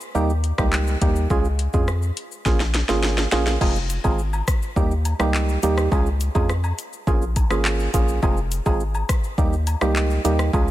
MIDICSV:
0, 0, Header, 1, 4, 480
1, 0, Start_track
1, 0, Tempo, 576923
1, 1086, Time_signature, 4, 2, 24, 8
1, 8909, End_track
2, 0, Start_track
2, 0, Title_t, "Synth stab"
2, 0, Program_c, 0, 62
2, 123, Note_on_c, 0, 55, 94
2, 124, Note_on_c, 0, 58, 84
2, 126, Note_on_c, 0, 63, 86
2, 128, Note_on_c, 0, 67, 101
2, 264, Note_off_c, 0, 55, 0
2, 265, Note_off_c, 0, 58, 0
2, 266, Note_off_c, 0, 63, 0
2, 267, Note_off_c, 0, 67, 0
2, 483, Note_on_c, 0, 55, 78
2, 485, Note_on_c, 0, 58, 74
2, 486, Note_on_c, 0, 63, 72
2, 489, Note_on_c, 0, 67, 83
2, 815, Note_off_c, 0, 55, 0
2, 816, Note_off_c, 0, 58, 0
2, 817, Note_off_c, 0, 63, 0
2, 818, Note_off_c, 0, 67, 0
2, 843, Note_on_c, 0, 55, 77
2, 845, Note_on_c, 0, 58, 71
2, 847, Note_on_c, 0, 63, 71
2, 848, Note_on_c, 0, 67, 88
2, 1065, Note_off_c, 0, 55, 0
2, 1066, Note_off_c, 0, 58, 0
2, 1067, Note_off_c, 0, 63, 0
2, 1068, Note_off_c, 0, 67, 0
2, 1085, Note_on_c, 0, 56, 92
2, 1086, Note_on_c, 0, 61, 86
2, 1088, Note_on_c, 0, 65, 89
2, 1089, Note_on_c, 0, 68, 109
2, 1225, Note_off_c, 0, 56, 0
2, 1226, Note_off_c, 0, 61, 0
2, 1227, Note_off_c, 0, 65, 0
2, 1227, Note_off_c, 0, 68, 0
2, 1444, Note_on_c, 0, 56, 73
2, 1446, Note_on_c, 0, 61, 70
2, 1447, Note_on_c, 0, 65, 71
2, 1449, Note_on_c, 0, 68, 85
2, 1585, Note_off_c, 0, 56, 0
2, 1585, Note_off_c, 0, 61, 0
2, 1586, Note_off_c, 0, 65, 0
2, 1587, Note_off_c, 0, 68, 0
2, 2043, Note_on_c, 0, 58, 95
2, 2044, Note_on_c, 0, 61, 88
2, 2046, Note_on_c, 0, 65, 88
2, 2047, Note_on_c, 0, 68, 104
2, 2184, Note_off_c, 0, 58, 0
2, 2185, Note_off_c, 0, 61, 0
2, 2186, Note_off_c, 0, 65, 0
2, 2186, Note_off_c, 0, 68, 0
2, 2401, Note_on_c, 0, 58, 78
2, 2402, Note_on_c, 0, 61, 70
2, 2404, Note_on_c, 0, 65, 72
2, 2405, Note_on_c, 0, 68, 88
2, 2734, Note_off_c, 0, 58, 0
2, 2735, Note_off_c, 0, 61, 0
2, 2736, Note_off_c, 0, 65, 0
2, 2737, Note_off_c, 0, 68, 0
2, 2762, Note_on_c, 0, 58, 78
2, 2764, Note_on_c, 0, 61, 72
2, 2766, Note_on_c, 0, 65, 71
2, 2768, Note_on_c, 0, 68, 91
2, 2985, Note_off_c, 0, 58, 0
2, 2986, Note_off_c, 0, 61, 0
2, 2987, Note_off_c, 0, 65, 0
2, 2987, Note_off_c, 0, 68, 0
2, 3002, Note_on_c, 0, 56, 97
2, 3003, Note_on_c, 0, 60, 87
2, 3004, Note_on_c, 0, 65, 90
2, 3007, Note_on_c, 0, 68, 101
2, 3144, Note_off_c, 0, 56, 0
2, 3144, Note_off_c, 0, 60, 0
2, 3145, Note_off_c, 0, 65, 0
2, 3146, Note_off_c, 0, 68, 0
2, 3362, Note_on_c, 0, 56, 77
2, 3363, Note_on_c, 0, 60, 72
2, 3365, Note_on_c, 0, 65, 67
2, 3366, Note_on_c, 0, 68, 85
2, 3504, Note_off_c, 0, 56, 0
2, 3504, Note_off_c, 0, 60, 0
2, 3505, Note_off_c, 0, 65, 0
2, 3506, Note_off_c, 0, 68, 0
2, 3962, Note_on_c, 0, 55, 94
2, 3963, Note_on_c, 0, 58, 87
2, 3965, Note_on_c, 0, 63, 86
2, 3967, Note_on_c, 0, 67, 109
2, 4104, Note_off_c, 0, 55, 0
2, 4104, Note_off_c, 0, 58, 0
2, 4105, Note_off_c, 0, 63, 0
2, 4106, Note_off_c, 0, 67, 0
2, 4321, Note_on_c, 0, 55, 80
2, 4323, Note_on_c, 0, 58, 71
2, 4325, Note_on_c, 0, 63, 68
2, 4326, Note_on_c, 0, 67, 85
2, 4654, Note_off_c, 0, 55, 0
2, 4655, Note_off_c, 0, 58, 0
2, 4656, Note_off_c, 0, 63, 0
2, 4657, Note_off_c, 0, 67, 0
2, 4682, Note_on_c, 0, 55, 81
2, 4684, Note_on_c, 0, 58, 73
2, 4686, Note_on_c, 0, 63, 72
2, 4688, Note_on_c, 0, 67, 89
2, 4905, Note_off_c, 0, 55, 0
2, 4906, Note_off_c, 0, 58, 0
2, 4907, Note_off_c, 0, 63, 0
2, 4907, Note_off_c, 0, 67, 0
2, 4921, Note_on_c, 0, 56, 96
2, 4923, Note_on_c, 0, 61, 89
2, 4925, Note_on_c, 0, 65, 88
2, 4927, Note_on_c, 0, 68, 105
2, 5063, Note_off_c, 0, 56, 0
2, 5064, Note_off_c, 0, 61, 0
2, 5065, Note_off_c, 0, 65, 0
2, 5066, Note_off_c, 0, 68, 0
2, 5282, Note_on_c, 0, 56, 76
2, 5284, Note_on_c, 0, 61, 68
2, 5286, Note_on_c, 0, 65, 71
2, 5288, Note_on_c, 0, 68, 87
2, 5424, Note_off_c, 0, 56, 0
2, 5425, Note_off_c, 0, 61, 0
2, 5426, Note_off_c, 0, 65, 0
2, 5427, Note_off_c, 0, 68, 0
2, 5883, Note_on_c, 0, 58, 99
2, 5884, Note_on_c, 0, 61, 89
2, 5886, Note_on_c, 0, 65, 87
2, 5888, Note_on_c, 0, 68, 105
2, 6024, Note_off_c, 0, 58, 0
2, 6025, Note_off_c, 0, 61, 0
2, 6026, Note_off_c, 0, 65, 0
2, 6027, Note_off_c, 0, 68, 0
2, 6243, Note_on_c, 0, 58, 81
2, 6245, Note_on_c, 0, 61, 71
2, 6247, Note_on_c, 0, 65, 71
2, 6248, Note_on_c, 0, 68, 85
2, 6576, Note_off_c, 0, 58, 0
2, 6576, Note_off_c, 0, 61, 0
2, 6577, Note_off_c, 0, 65, 0
2, 6578, Note_off_c, 0, 68, 0
2, 6603, Note_on_c, 0, 58, 78
2, 6605, Note_on_c, 0, 61, 73
2, 6607, Note_on_c, 0, 65, 72
2, 6608, Note_on_c, 0, 68, 84
2, 6825, Note_off_c, 0, 58, 0
2, 6826, Note_off_c, 0, 61, 0
2, 6827, Note_off_c, 0, 65, 0
2, 6828, Note_off_c, 0, 68, 0
2, 6843, Note_on_c, 0, 56, 93
2, 6845, Note_on_c, 0, 60, 86
2, 6846, Note_on_c, 0, 65, 86
2, 6848, Note_on_c, 0, 68, 102
2, 6984, Note_off_c, 0, 56, 0
2, 6985, Note_off_c, 0, 60, 0
2, 6986, Note_off_c, 0, 65, 0
2, 6987, Note_off_c, 0, 68, 0
2, 7204, Note_on_c, 0, 56, 78
2, 7205, Note_on_c, 0, 60, 73
2, 7207, Note_on_c, 0, 65, 70
2, 7209, Note_on_c, 0, 68, 85
2, 7345, Note_off_c, 0, 56, 0
2, 7345, Note_off_c, 0, 60, 0
2, 7346, Note_off_c, 0, 65, 0
2, 7347, Note_off_c, 0, 68, 0
2, 7803, Note_on_c, 0, 55, 98
2, 7805, Note_on_c, 0, 58, 85
2, 7807, Note_on_c, 0, 63, 91
2, 7808, Note_on_c, 0, 67, 100
2, 7944, Note_off_c, 0, 55, 0
2, 7945, Note_off_c, 0, 58, 0
2, 7946, Note_off_c, 0, 63, 0
2, 7947, Note_off_c, 0, 67, 0
2, 8163, Note_on_c, 0, 55, 82
2, 8165, Note_on_c, 0, 58, 73
2, 8167, Note_on_c, 0, 63, 74
2, 8168, Note_on_c, 0, 67, 87
2, 8496, Note_off_c, 0, 55, 0
2, 8496, Note_off_c, 0, 58, 0
2, 8497, Note_off_c, 0, 63, 0
2, 8498, Note_off_c, 0, 67, 0
2, 8523, Note_on_c, 0, 55, 77
2, 8525, Note_on_c, 0, 58, 71
2, 8526, Note_on_c, 0, 63, 73
2, 8528, Note_on_c, 0, 67, 89
2, 8745, Note_off_c, 0, 55, 0
2, 8746, Note_off_c, 0, 58, 0
2, 8746, Note_off_c, 0, 63, 0
2, 8747, Note_off_c, 0, 67, 0
2, 8763, Note_on_c, 0, 56, 94
2, 8765, Note_on_c, 0, 61, 87
2, 8766, Note_on_c, 0, 65, 89
2, 8768, Note_on_c, 0, 68, 107
2, 8904, Note_off_c, 0, 56, 0
2, 8905, Note_off_c, 0, 61, 0
2, 8906, Note_off_c, 0, 65, 0
2, 8907, Note_off_c, 0, 68, 0
2, 8909, End_track
3, 0, Start_track
3, 0, Title_t, "Analog synth bass"
3, 0, Program_c, 1, 38
3, 124, Note_on_c, 1, 39, 104
3, 436, Note_off_c, 1, 39, 0
3, 487, Note_on_c, 1, 37, 91
3, 797, Note_off_c, 1, 37, 0
3, 845, Note_on_c, 1, 39, 104
3, 1052, Note_off_c, 1, 39, 0
3, 1084, Note_on_c, 1, 37, 107
3, 1396, Note_off_c, 1, 37, 0
3, 1446, Note_on_c, 1, 41, 95
3, 1757, Note_off_c, 1, 41, 0
3, 2043, Note_on_c, 1, 34, 107
3, 2355, Note_off_c, 1, 34, 0
3, 2406, Note_on_c, 1, 32, 95
3, 2716, Note_off_c, 1, 32, 0
3, 2765, Note_on_c, 1, 34, 93
3, 2972, Note_off_c, 1, 34, 0
3, 3005, Note_on_c, 1, 29, 104
3, 3316, Note_off_c, 1, 29, 0
3, 3366, Note_on_c, 1, 32, 90
3, 3677, Note_off_c, 1, 32, 0
3, 3963, Note_on_c, 1, 39, 108
3, 4275, Note_off_c, 1, 39, 0
3, 4325, Note_on_c, 1, 37, 89
3, 4636, Note_off_c, 1, 37, 0
3, 4685, Note_on_c, 1, 39, 104
3, 4892, Note_off_c, 1, 39, 0
3, 4924, Note_on_c, 1, 37, 104
3, 5235, Note_off_c, 1, 37, 0
3, 5286, Note_on_c, 1, 41, 95
3, 5596, Note_off_c, 1, 41, 0
3, 5883, Note_on_c, 1, 34, 109
3, 6195, Note_off_c, 1, 34, 0
3, 6244, Note_on_c, 1, 32, 95
3, 6556, Note_off_c, 1, 32, 0
3, 6605, Note_on_c, 1, 34, 91
3, 6813, Note_off_c, 1, 34, 0
3, 6845, Note_on_c, 1, 29, 108
3, 7156, Note_off_c, 1, 29, 0
3, 7207, Note_on_c, 1, 32, 86
3, 7517, Note_off_c, 1, 32, 0
3, 7804, Note_on_c, 1, 39, 103
3, 8115, Note_off_c, 1, 39, 0
3, 8166, Note_on_c, 1, 37, 93
3, 8476, Note_off_c, 1, 37, 0
3, 8526, Note_on_c, 1, 39, 107
3, 8733, Note_off_c, 1, 39, 0
3, 8765, Note_on_c, 1, 37, 108
3, 8909, Note_off_c, 1, 37, 0
3, 8909, End_track
4, 0, Start_track
4, 0, Title_t, "Drums"
4, 7, Note_on_c, 9, 82, 77
4, 90, Note_off_c, 9, 82, 0
4, 127, Note_on_c, 9, 82, 71
4, 210, Note_off_c, 9, 82, 0
4, 248, Note_on_c, 9, 82, 56
4, 331, Note_off_c, 9, 82, 0
4, 364, Note_on_c, 9, 42, 66
4, 364, Note_on_c, 9, 82, 47
4, 447, Note_off_c, 9, 42, 0
4, 447, Note_off_c, 9, 82, 0
4, 485, Note_on_c, 9, 37, 110
4, 486, Note_on_c, 9, 36, 94
4, 486, Note_on_c, 9, 82, 75
4, 568, Note_off_c, 9, 37, 0
4, 569, Note_off_c, 9, 36, 0
4, 570, Note_off_c, 9, 82, 0
4, 605, Note_on_c, 9, 39, 86
4, 607, Note_on_c, 9, 82, 74
4, 689, Note_off_c, 9, 39, 0
4, 690, Note_off_c, 9, 82, 0
4, 725, Note_on_c, 9, 82, 53
4, 808, Note_off_c, 9, 82, 0
4, 845, Note_on_c, 9, 36, 87
4, 845, Note_on_c, 9, 42, 72
4, 845, Note_on_c, 9, 82, 52
4, 928, Note_off_c, 9, 36, 0
4, 928, Note_off_c, 9, 42, 0
4, 928, Note_off_c, 9, 82, 0
4, 964, Note_on_c, 9, 82, 83
4, 1047, Note_off_c, 9, 82, 0
4, 1083, Note_on_c, 9, 82, 64
4, 1084, Note_on_c, 9, 36, 110
4, 1166, Note_off_c, 9, 82, 0
4, 1167, Note_off_c, 9, 36, 0
4, 1203, Note_on_c, 9, 82, 48
4, 1286, Note_off_c, 9, 82, 0
4, 1323, Note_on_c, 9, 42, 63
4, 1323, Note_on_c, 9, 82, 44
4, 1406, Note_off_c, 9, 42, 0
4, 1406, Note_off_c, 9, 82, 0
4, 1442, Note_on_c, 9, 82, 67
4, 1446, Note_on_c, 9, 36, 85
4, 1526, Note_off_c, 9, 82, 0
4, 1529, Note_off_c, 9, 36, 0
4, 1562, Note_on_c, 9, 82, 70
4, 1563, Note_on_c, 9, 37, 95
4, 1645, Note_off_c, 9, 82, 0
4, 1647, Note_off_c, 9, 37, 0
4, 1684, Note_on_c, 9, 82, 56
4, 1767, Note_off_c, 9, 82, 0
4, 1805, Note_on_c, 9, 42, 86
4, 1805, Note_on_c, 9, 82, 63
4, 1888, Note_off_c, 9, 42, 0
4, 1888, Note_off_c, 9, 82, 0
4, 1927, Note_on_c, 9, 82, 74
4, 2010, Note_off_c, 9, 82, 0
4, 2043, Note_on_c, 9, 36, 97
4, 2045, Note_on_c, 9, 38, 60
4, 2045, Note_on_c, 9, 82, 72
4, 2127, Note_off_c, 9, 36, 0
4, 2128, Note_off_c, 9, 38, 0
4, 2129, Note_off_c, 9, 82, 0
4, 2164, Note_on_c, 9, 38, 56
4, 2166, Note_on_c, 9, 82, 58
4, 2247, Note_off_c, 9, 38, 0
4, 2249, Note_off_c, 9, 82, 0
4, 2283, Note_on_c, 9, 38, 75
4, 2283, Note_on_c, 9, 42, 68
4, 2283, Note_on_c, 9, 82, 46
4, 2366, Note_off_c, 9, 38, 0
4, 2366, Note_off_c, 9, 42, 0
4, 2366, Note_off_c, 9, 82, 0
4, 2403, Note_on_c, 9, 38, 68
4, 2404, Note_on_c, 9, 82, 79
4, 2487, Note_off_c, 9, 38, 0
4, 2488, Note_off_c, 9, 82, 0
4, 2524, Note_on_c, 9, 38, 84
4, 2526, Note_on_c, 9, 82, 71
4, 2607, Note_off_c, 9, 38, 0
4, 2609, Note_off_c, 9, 82, 0
4, 2644, Note_on_c, 9, 38, 79
4, 2645, Note_on_c, 9, 82, 54
4, 2727, Note_off_c, 9, 38, 0
4, 2728, Note_off_c, 9, 82, 0
4, 2764, Note_on_c, 9, 38, 105
4, 2765, Note_on_c, 9, 42, 71
4, 2765, Note_on_c, 9, 82, 52
4, 2847, Note_off_c, 9, 38, 0
4, 2848, Note_off_c, 9, 42, 0
4, 2848, Note_off_c, 9, 82, 0
4, 2884, Note_on_c, 9, 38, 90
4, 2884, Note_on_c, 9, 82, 84
4, 2967, Note_off_c, 9, 38, 0
4, 2967, Note_off_c, 9, 82, 0
4, 3005, Note_on_c, 9, 36, 113
4, 3005, Note_on_c, 9, 49, 106
4, 3005, Note_on_c, 9, 82, 65
4, 3006, Note_on_c, 9, 76, 75
4, 3088, Note_off_c, 9, 36, 0
4, 3088, Note_off_c, 9, 49, 0
4, 3088, Note_off_c, 9, 82, 0
4, 3089, Note_off_c, 9, 76, 0
4, 3124, Note_on_c, 9, 82, 52
4, 3207, Note_off_c, 9, 82, 0
4, 3243, Note_on_c, 9, 69, 76
4, 3244, Note_on_c, 9, 42, 62
4, 3244, Note_on_c, 9, 82, 45
4, 3326, Note_off_c, 9, 69, 0
4, 3327, Note_off_c, 9, 42, 0
4, 3327, Note_off_c, 9, 82, 0
4, 3362, Note_on_c, 9, 76, 76
4, 3364, Note_on_c, 9, 82, 69
4, 3366, Note_on_c, 9, 36, 84
4, 3445, Note_off_c, 9, 76, 0
4, 3447, Note_off_c, 9, 82, 0
4, 3449, Note_off_c, 9, 36, 0
4, 3482, Note_on_c, 9, 82, 71
4, 3565, Note_off_c, 9, 82, 0
4, 3604, Note_on_c, 9, 76, 80
4, 3604, Note_on_c, 9, 82, 57
4, 3687, Note_off_c, 9, 76, 0
4, 3687, Note_off_c, 9, 82, 0
4, 3723, Note_on_c, 9, 69, 80
4, 3725, Note_on_c, 9, 36, 106
4, 3725, Note_on_c, 9, 37, 101
4, 3726, Note_on_c, 9, 42, 86
4, 3726, Note_on_c, 9, 82, 62
4, 3807, Note_off_c, 9, 69, 0
4, 3808, Note_off_c, 9, 36, 0
4, 3808, Note_off_c, 9, 37, 0
4, 3810, Note_off_c, 9, 42, 0
4, 3810, Note_off_c, 9, 82, 0
4, 3847, Note_on_c, 9, 82, 82
4, 3930, Note_off_c, 9, 82, 0
4, 3963, Note_on_c, 9, 36, 97
4, 3965, Note_on_c, 9, 82, 72
4, 4046, Note_off_c, 9, 36, 0
4, 4048, Note_off_c, 9, 82, 0
4, 4086, Note_on_c, 9, 82, 57
4, 4169, Note_off_c, 9, 82, 0
4, 4203, Note_on_c, 9, 69, 60
4, 4203, Note_on_c, 9, 76, 63
4, 4204, Note_on_c, 9, 42, 68
4, 4204, Note_on_c, 9, 82, 47
4, 4286, Note_off_c, 9, 69, 0
4, 4286, Note_off_c, 9, 76, 0
4, 4287, Note_off_c, 9, 42, 0
4, 4287, Note_off_c, 9, 82, 0
4, 4324, Note_on_c, 9, 37, 109
4, 4325, Note_on_c, 9, 82, 78
4, 4407, Note_off_c, 9, 37, 0
4, 4408, Note_off_c, 9, 82, 0
4, 4446, Note_on_c, 9, 39, 93
4, 4448, Note_on_c, 9, 82, 68
4, 4529, Note_off_c, 9, 39, 0
4, 4531, Note_off_c, 9, 82, 0
4, 4566, Note_on_c, 9, 82, 53
4, 4649, Note_off_c, 9, 82, 0
4, 4683, Note_on_c, 9, 69, 75
4, 4686, Note_on_c, 9, 42, 74
4, 4686, Note_on_c, 9, 82, 51
4, 4767, Note_off_c, 9, 69, 0
4, 4769, Note_off_c, 9, 42, 0
4, 4769, Note_off_c, 9, 82, 0
4, 4805, Note_on_c, 9, 37, 100
4, 4805, Note_on_c, 9, 82, 84
4, 4888, Note_off_c, 9, 82, 0
4, 4889, Note_off_c, 9, 37, 0
4, 4924, Note_on_c, 9, 36, 116
4, 4924, Note_on_c, 9, 82, 65
4, 4925, Note_on_c, 9, 76, 75
4, 5007, Note_off_c, 9, 36, 0
4, 5008, Note_off_c, 9, 76, 0
4, 5008, Note_off_c, 9, 82, 0
4, 5043, Note_on_c, 9, 82, 54
4, 5127, Note_off_c, 9, 82, 0
4, 5162, Note_on_c, 9, 69, 77
4, 5164, Note_on_c, 9, 42, 64
4, 5164, Note_on_c, 9, 82, 44
4, 5245, Note_off_c, 9, 69, 0
4, 5248, Note_off_c, 9, 42, 0
4, 5248, Note_off_c, 9, 82, 0
4, 5283, Note_on_c, 9, 76, 74
4, 5283, Note_on_c, 9, 82, 68
4, 5286, Note_on_c, 9, 36, 83
4, 5366, Note_off_c, 9, 82, 0
4, 5367, Note_off_c, 9, 76, 0
4, 5369, Note_off_c, 9, 36, 0
4, 5402, Note_on_c, 9, 82, 70
4, 5404, Note_on_c, 9, 37, 95
4, 5485, Note_off_c, 9, 82, 0
4, 5487, Note_off_c, 9, 37, 0
4, 5523, Note_on_c, 9, 76, 74
4, 5523, Note_on_c, 9, 82, 54
4, 5607, Note_off_c, 9, 76, 0
4, 5607, Note_off_c, 9, 82, 0
4, 5644, Note_on_c, 9, 69, 80
4, 5645, Note_on_c, 9, 42, 83
4, 5645, Note_on_c, 9, 82, 64
4, 5727, Note_off_c, 9, 69, 0
4, 5728, Note_off_c, 9, 42, 0
4, 5728, Note_off_c, 9, 82, 0
4, 5767, Note_on_c, 9, 82, 80
4, 5850, Note_off_c, 9, 82, 0
4, 5884, Note_on_c, 9, 36, 101
4, 5885, Note_on_c, 9, 82, 70
4, 5967, Note_off_c, 9, 36, 0
4, 5969, Note_off_c, 9, 82, 0
4, 6006, Note_on_c, 9, 82, 58
4, 6090, Note_off_c, 9, 82, 0
4, 6124, Note_on_c, 9, 42, 68
4, 6124, Note_on_c, 9, 82, 50
4, 6125, Note_on_c, 9, 69, 62
4, 6125, Note_on_c, 9, 76, 61
4, 6126, Note_on_c, 9, 36, 93
4, 6207, Note_off_c, 9, 42, 0
4, 6207, Note_off_c, 9, 82, 0
4, 6208, Note_off_c, 9, 69, 0
4, 6208, Note_off_c, 9, 76, 0
4, 6209, Note_off_c, 9, 36, 0
4, 6244, Note_on_c, 9, 37, 110
4, 6245, Note_on_c, 9, 82, 80
4, 6327, Note_off_c, 9, 37, 0
4, 6329, Note_off_c, 9, 82, 0
4, 6365, Note_on_c, 9, 39, 89
4, 6367, Note_on_c, 9, 82, 70
4, 6448, Note_off_c, 9, 39, 0
4, 6450, Note_off_c, 9, 82, 0
4, 6485, Note_on_c, 9, 82, 54
4, 6568, Note_off_c, 9, 82, 0
4, 6605, Note_on_c, 9, 36, 85
4, 6605, Note_on_c, 9, 42, 74
4, 6605, Note_on_c, 9, 69, 72
4, 6605, Note_on_c, 9, 82, 53
4, 6688, Note_off_c, 9, 36, 0
4, 6688, Note_off_c, 9, 42, 0
4, 6688, Note_off_c, 9, 69, 0
4, 6688, Note_off_c, 9, 82, 0
4, 6724, Note_on_c, 9, 82, 89
4, 6808, Note_off_c, 9, 82, 0
4, 6844, Note_on_c, 9, 82, 63
4, 6845, Note_on_c, 9, 36, 115
4, 6847, Note_on_c, 9, 76, 73
4, 6927, Note_off_c, 9, 82, 0
4, 6928, Note_off_c, 9, 36, 0
4, 6930, Note_off_c, 9, 76, 0
4, 6965, Note_on_c, 9, 82, 51
4, 7048, Note_off_c, 9, 82, 0
4, 7085, Note_on_c, 9, 42, 64
4, 7085, Note_on_c, 9, 69, 74
4, 7085, Note_on_c, 9, 82, 46
4, 7168, Note_off_c, 9, 69, 0
4, 7169, Note_off_c, 9, 42, 0
4, 7169, Note_off_c, 9, 82, 0
4, 7203, Note_on_c, 9, 82, 68
4, 7205, Note_on_c, 9, 76, 79
4, 7207, Note_on_c, 9, 36, 88
4, 7286, Note_off_c, 9, 82, 0
4, 7288, Note_off_c, 9, 76, 0
4, 7290, Note_off_c, 9, 36, 0
4, 7323, Note_on_c, 9, 82, 73
4, 7406, Note_off_c, 9, 82, 0
4, 7443, Note_on_c, 9, 82, 57
4, 7444, Note_on_c, 9, 76, 77
4, 7526, Note_off_c, 9, 82, 0
4, 7527, Note_off_c, 9, 76, 0
4, 7564, Note_on_c, 9, 37, 110
4, 7565, Note_on_c, 9, 36, 110
4, 7565, Note_on_c, 9, 42, 89
4, 7565, Note_on_c, 9, 82, 66
4, 7566, Note_on_c, 9, 69, 83
4, 7647, Note_off_c, 9, 37, 0
4, 7648, Note_off_c, 9, 36, 0
4, 7649, Note_off_c, 9, 42, 0
4, 7649, Note_off_c, 9, 69, 0
4, 7649, Note_off_c, 9, 82, 0
4, 7687, Note_on_c, 9, 82, 77
4, 7770, Note_off_c, 9, 82, 0
4, 7804, Note_on_c, 9, 36, 99
4, 7806, Note_on_c, 9, 82, 70
4, 7887, Note_off_c, 9, 36, 0
4, 7889, Note_off_c, 9, 82, 0
4, 7927, Note_on_c, 9, 82, 55
4, 8010, Note_off_c, 9, 82, 0
4, 8044, Note_on_c, 9, 42, 67
4, 8044, Note_on_c, 9, 82, 49
4, 8046, Note_on_c, 9, 69, 63
4, 8046, Note_on_c, 9, 76, 64
4, 8128, Note_off_c, 9, 42, 0
4, 8128, Note_off_c, 9, 82, 0
4, 8129, Note_off_c, 9, 69, 0
4, 8129, Note_off_c, 9, 76, 0
4, 8164, Note_on_c, 9, 37, 109
4, 8166, Note_on_c, 9, 82, 77
4, 8248, Note_off_c, 9, 37, 0
4, 8249, Note_off_c, 9, 82, 0
4, 8286, Note_on_c, 9, 39, 89
4, 8287, Note_on_c, 9, 82, 72
4, 8369, Note_off_c, 9, 39, 0
4, 8371, Note_off_c, 9, 82, 0
4, 8407, Note_on_c, 9, 82, 55
4, 8490, Note_off_c, 9, 82, 0
4, 8526, Note_on_c, 9, 69, 74
4, 8527, Note_on_c, 9, 42, 75
4, 8527, Note_on_c, 9, 82, 53
4, 8609, Note_off_c, 9, 69, 0
4, 8610, Note_off_c, 9, 42, 0
4, 8610, Note_off_c, 9, 82, 0
4, 8645, Note_on_c, 9, 82, 86
4, 8646, Note_on_c, 9, 37, 97
4, 8729, Note_off_c, 9, 37, 0
4, 8729, Note_off_c, 9, 82, 0
4, 8765, Note_on_c, 9, 36, 116
4, 8765, Note_on_c, 9, 82, 64
4, 8767, Note_on_c, 9, 76, 75
4, 8848, Note_off_c, 9, 36, 0
4, 8848, Note_off_c, 9, 82, 0
4, 8850, Note_off_c, 9, 76, 0
4, 8883, Note_on_c, 9, 82, 52
4, 8909, Note_off_c, 9, 82, 0
4, 8909, End_track
0, 0, End_of_file